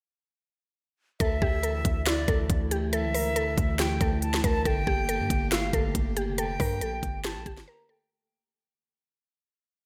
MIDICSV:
0, 0, Header, 1, 6, 480
1, 0, Start_track
1, 0, Tempo, 431655
1, 1337, Time_signature, 4, 2, 24, 8
1, 10963, End_track
2, 0, Start_track
2, 0, Title_t, "Flute"
2, 0, Program_c, 0, 73
2, 1337, Note_on_c, 0, 76, 120
2, 2252, Note_off_c, 0, 76, 0
2, 2294, Note_on_c, 0, 74, 96
2, 2746, Note_off_c, 0, 74, 0
2, 3253, Note_on_c, 0, 76, 117
2, 4170, Note_off_c, 0, 76, 0
2, 4215, Note_on_c, 0, 79, 87
2, 4667, Note_off_c, 0, 79, 0
2, 4694, Note_on_c, 0, 81, 84
2, 4923, Note_off_c, 0, 81, 0
2, 4938, Note_on_c, 0, 81, 98
2, 5165, Note_off_c, 0, 81, 0
2, 5170, Note_on_c, 0, 79, 110
2, 6088, Note_off_c, 0, 79, 0
2, 6138, Note_on_c, 0, 77, 87
2, 6588, Note_off_c, 0, 77, 0
2, 7096, Note_on_c, 0, 79, 116
2, 8012, Note_off_c, 0, 79, 0
2, 8053, Note_on_c, 0, 81, 79
2, 8506, Note_off_c, 0, 81, 0
2, 8537, Note_on_c, 0, 82, 75
2, 8765, Note_off_c, 0, 82, 0
2, 8779, Note_on_c, 0, 79, 70
2, 9006, Note_off_c, 0, 79, 0
2, 10963, End_track
3, 0, Start_track
3, 0, Title_t, "Synth pluck"
3, 0, Program_c, 1, 84
3, 1335, Note_on_c, 1, 69, 110
3, 1517, Note_off_c, 1, 69, 0
3, 1576, Note_on_c, 1, 67, 82
3, 1757, Note_off_c, 1, 67, 0
3, 1815, Note_on_c, 1, 69, 81
3, 2267, Note_off_c, 1, 69, 0
3, 2298, Note_on_c, 1, 64, 92
3, 2478, Note_off_c, 1, 64, 0
3, 2536, Note_on_c, 1, 69, 84
3, 2987, Note_off_c, 1, 69, 0
3, 3016, Note_on_c, 1, 67, 79
3, 3197, Note_off_c, 1, 67, 0
3, 3256, Note_on_c, 1, 69, 117
3, 3437, Note_off_c, 1, 69, 0
3, 3496, Note_on_c, 1, 70, 85
3, 3677, Note_off_c, 1, 70, 0
3, 3735, Note_on_c, 1, 69, 98
3, 4187, Note_off_c, 1, 69, 0
3, 4216, Note_on_c, 1, 67, 87
3, 4397, Note_off_c, 1, 67, 0
3, 4457, Note_on_c, 1, 69, 80
3, 4908, Note_off_c, 1, 69, 0
3, 4937, Note_on_c, 1, 70, 85
3, 5118, Note_off_c, 1, 70, 0
3, 5176, Note_on_c, 1, 69, 100
3, 5357, Note_off_c, 1, 69, 0
3, 5417, Note_on_c, 1, 67, 77
3, 5598, Note_off_c, 1, 67, 0
3, 5657, Note_on_c, 1, 69, 89
3, 6108, Note_off_c, 1, 69, 0
3, 6136, Note_on_c, 1, 64, 96
3, 6317, Note_off_c, 1, 64, 0
3, 6375, Note_on_c, 1, 69, 83
3, 6827, Note_off_c, 1, 69, 0
3, 6856, Note_on_c, 1, 67, 77
3, 7037, Note_off_c, 1, 67, 0
3, 7097, Note_on_c, 1, 69, 104
3, 7278, Note_off_c, 1, 69, 0
3, 7338, Note_on_c, 1, 70, 89
3, 7519, Note_off_c, 1, 70, 0
3, 7577, Note_on_c, 1, 69, 81
3, 8028, Note_off_c, 1, 69, 0
3, 8057, Note_on_c, 1, 67, 93
3, 8238, Note_off_c, 1, 67, 0
3, 8296, Note_on_c, 1, 67, 85
3, 8478, Note_off_c, 1, 67, 0
3, 8536, Note_on_c, 1, 70, 86
3, 8717, Note_off_c, 1, 70, 0
3, 8775, Note_on_c, 1, 69, 79
3, 8957, Note_off_c, 1, 69, 0
3, 10963, End_track
4, 0, Start_track
4, 0, Title_t, "Analog synth pad"
4, 0, Program_c, 2, 89
4, 1336, Note_on_c, 2, 50, 87
4, 1336, Note_on_c, 2, 52, 77
4, 1336, Note_on_c, 2, 57, 80
4, 1337, Note_on_c, 2, 64, 94
4, 5138, Note_off_c, 2, 52, 0
4, 5138, Note_off_c, 2, 64, 0
4, 5176, Note_on_c, 2, 58, 76
4, 5176, Note_on_c, 2, 67, 94
4, 8972, Note_off_c, 2, 50, 0
4, 8972, Note_off_c, 2, 57, 0
4, 8977, Note_off_c, 2, 67, 0
4, 8978, Note_off_c, 2, 58, 0
4, 10963, End_track
5, 0, Start_track
5, 0, Title_t, "808-style bass"
5, 0, Program_c, 3, 38
5, 1336, Note_on_c, 3, 38, 115
5, 1567, Note_off_c, 3, 38, 0
5, 1577, Note_on_c, 3, 38, 99
5, 2037, Note_off_c, 3, 38, 0
5, 2056, Note_on_c, 3, 38, 105
5, 2517, Note_off_c, 3, 38, 0
5, 2535, Note_on_c, 3, 38, 106
5, 2766, Note_off_c, 3, 38, 0
5, 2776, Note_on_c, 3, 38, 109
5, 3384, Note_on_c, 3, 37, 106
5, 3400, Note_off_c, 3, 38, 0
5, 3680, Note_on_c, 3, 38, 100
5, 3696, Note_off_c, 3, 37, 0
5, 3961, Note_off_c, 3, 38, 0
5, 3976, Note_on_c, 3, 38, 103
5, 4437, Note_off_c, 3, 38, 0
5, 4455, Note_on_c, 3, 38, 106
5, 4917, Note_off_c, 3, 38, 0
5, 4936, Note_on_c, 3, 38, 102
5, 5167, Note_off_c, 3, 38, 0
5, 5176, Note_on_c, 3, 31, 116
5, 5406, Note_off_c, 3, 31, 0
5, 5417, Note_on_c, 3, 31, 103
5, 5783, Note_on_c, 3, 43, 101
5, 5800, Note_off_c, 3, 31, 0
5, 5890, Note_off_c, 3, 43, 0
5, 5896, Note_on_c, 3, 31, 102
5, 6357, Note_off_c, 3, 31, 0
5, 6375, Note_on_c, 3, 31, 101
5, 6606, Note_off_c, 3, 31, 0
5, 6615, Note_on_c, 3, 31, 102
5, 6983, Note_on_c, 3, 29, 100
5, 7000, Note_off_c, 3, 31, 0
5, 7318, Note_off_c, 3, 29, 0
5, 7337, Note_on_c, 3, 43, 103
5, 7576, Note_on_c, 3, 34, 100
5, 7593, Note_off_c, 3, 43, 0
5, 7804, Note_off_c, 3, 34, 0
5, 7816, Note_on_c, 3, 31, 104
5, 8184, Note_on_c, 3, 34, 97
5, 8200, Note_off_c, 3, 31, 0
5, 8291, Note_off_c, 3, 34, 0
5, 8296, Note_on_c, 3, 31, 104
5, 8526, Note_off_c, 3, 31, 0
5, 10963, End_track
6, 0, Start_track
6, 0, Title_t, "Drums"
6, 1336, Note_on_c, 9, 36, 110
6, 1336, Note_on_c, 9, 42, 80
6, 1447, Note_off_c, 9, 36, 0
6, 1447, Note_off_c, 9, 42, 0
6, 1577, Note_on_c, 9, 36, 91
6, 1688, Note_off_c, 9, 36, 0
6, 1818, Note_on_c, 9, 42, 70
6, 1929, Note_off_c, 9, 42, 0
6, 2056, Note_on_c, 9, 36, 97
6, 2058, Note_on_c, 9, 42, 78
6, 2167, Note_off_c, 9, 36, 0
6, 2169, Note_off_c, 9, 42, 0
6, 2296, Note_on_c, 9, 38, 122
6, 2296, Note_on_c, 9, 42, 89
6, 2407, Note_off_c, 9, 38, 0
6, 2407, Note_off_c, 9, 42, 0
6, 2536, Note_on_c, 9, 36, 106
6, 2537, Note_on_c, 9, 42, 70
6, 2647, Note_off_c, 9, 36, 0
6, 2648, Note_off_c, 9, 42, 0
6, 2776, Note_on_c, 9, 36, 91
6, 2776, Note_on_c, 9, 42, 76
6, 2887, Note_off_c, 9, 36, 0
6, 2887, Note_off_c, 9, 42, 0
6, 3017, Note_on_c, 9, 42, 80
6, 3128, Note_off_c, 9, 42, 0
6, 3256, Note_on_c, 9, 42, 81
6, 3367, Note_off_c, 9, 42, 0
6, 3497, Note_on_c, 9, 46, 70
6, 3609, Note_off_c, 9, 46, 0
6, 3738, Note_on_c, 9, 42, 71
6, 3849, Note_off_c, 9, 42, 0
6, 3976, Note_on_c, 9, 36, 98
6, 3978, Note_on_c, 9, 42, 81
6, 4087, Note_off_c, 9, 36, 0
6, 4089, Note_off_c, 9, 42, 0
6, 4216, Note_on_c, 9, 38, 125
6, 4216, Note_on_c, 9, 42, 86
6, 4327, Note_off_c, 9, 38, 0
6, 4327, Note_off_c, 9, 42, 0
6, 4455, Note_on_c, 9, 36, 107
6, 4457, Note_on_c, 9, 42, 67
6, 4567, Note_off_c, 9, 36, 0
6, 4568, Note_off_c, 9, 42, 0
6, 4696, Note_on_c, 9, 42, 78
6, 4807, Note_off_c, 9, 42, 0
6, 4824, Note_on_c, 9, 38, 92
6, 4935, Note_off_c, 9, 38, 0
6, 4936, Note_on_c, 9, 36, 104
6, 4937, Note_on_c, 9, 42, 80
6, 5047, Note_off_c, 9, 36, 0
6, 5048, Note_off_c, 9, 42, 0
6, 5176, Note_on_c, 9, 36, 108
6, 5176, Note_on_c, 9, 42, 81
6, 5287, Note_off_c, 9, 36, 0
6, 5287, Note_off_c, 9, 42, 0
6, 5417, Note_on_c, 9, 36, 91
6, 5528, Note_off_c, 9, 36, 0
6, 5658, Note_on_c, 9, 42, 74
6, 5769, Note_off_c, 9, 42, 0
6, 5896, Note_on_c, 9, 36, 99
6, 5898, Note_on_c, 9, 42, 77
6, 6007, Note_off_c, 9, 36, 0
6, 6009, Note_off_c, 9, 42, 0
6, 6135, Note_on_c, 9, 42, 87
6, 6136, Note_on_c, 9, 38, 120
6, 6247, Note_off_c, 9, 38, 0
6, 6247, Note_off_c, 9, 42, 0
6, 6375, Note_on_c, 9, 36, 110
6, 6377, Note_on_c, 9, 42, 69
6, 6487, Note_off_c, 9, 36, 0
6, 6488, Note_off_c, 9, 42, 0
6, 6615, Note_on_c, 9, 36, 87
6, 6616, Note_on_c, 9, 42, 76
6, 6727, Note_off_c, 9, 36, 0
6, 6727, Note_off_c, 9, 42, 0
6, 6857, Note_on_c, 9, 42, 82
6, 6968, Note_off_c, 9, 42, 0
6, 7096, Note_on_c, 9, 42, 79
6, 7207, Note_off_c, 9, 42, 0
6, 7337, Note_on_c, 9, 36, 88
6, 7337, Note_on_c, 9, 46, 69
6, 7448, Note_off_c, 9, 36, 0
6, 7448, Note_off_c, 9, 46, 0
6, 7577, Note_on_c, 9, 42, 70
6, 7689, Note_off_c, 9, 42, 0
6, 7816, Note_on_c, 9, 36, 94
6, 7818, Note_on_c, 9, 42, 77
6, 7927, Note_off_c, 9, 36, 0
6, 7929, Note_off_c, 9, 42, 0
6, 8056, Note_on_c, 9, 38, 116
6, 8056, Note_on_c, 9, 42, 88
6, 8167, Note_off_c, 9, 38, 0
6, 8167, Note_off_c, 9, 42, 0
6, 8296, Note_on_c, 9, 36, 106
6, 8297, Note_on_c, 9, 42, 68
6, 8407, Note_off_c, 9, 36, 0
6, 8408, Note_off_c, 9, 42, 0
6, 8422, Note_on_c, 9, 38, 80
6, 8534, Note_off_c, 9, 38, 0
6, 10963, End_track
0, 0, End_of_file